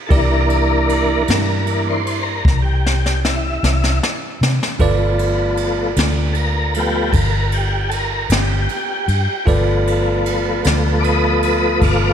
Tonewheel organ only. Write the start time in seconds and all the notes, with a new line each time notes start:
0.07 E3 A#3 D4 A4
0.11 A#4
1.67 E3 A#3 D4
1.88 C5
2.23 A#4
2.62 G4
3.25 E4
4.79 F3 A3 B3
6.33 A4 A#4
6.76 F3 A3 B3 G4
7.11 A4
7.16 A#4
7.54 G4
7.89 A4
7.94 A#4
8.33 G4
8.71 G4
9.48 F3 A3 B3
11.00 B4 D5
11.04 D#5
11.43 B4 D#5
11.83 D5 F5